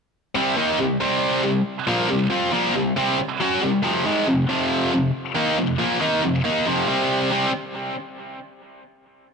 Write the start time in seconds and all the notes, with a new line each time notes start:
0.35 C3 G3 C4
0.57 D#3 A#3 D#4
0.79 C3 G3
1.00 C3 G3 C4
1.43 C3 G3
1.87 A#2 F3 A#3
2.09 C3 G3
2.30 F3 C4 F4
2.52 A#2 F3 A#3
2.75 C3 G3
2.96 C3 G3 C4
3.19 muted distorted electric guitar stroke
3.40 F#3 C#4 F#4
3.61 C3 G3
3.83 F2 C3 F3
4.05 G#2 D#3 G#3
4.27 F2 C3
4.49 F2 C3 F3
4.92 F2 C3
5.35 D#3 A#3 D#4
5.58 F2 C3
5.79 A#2 F3 A#3
6.00 D#3 A#3 D#4
6.23 F2 C3
6.45 D#3 A#3 D#4
6.66 F2 C3 F3
6.88 C3 G3 C4
7.31 C3 G3 C4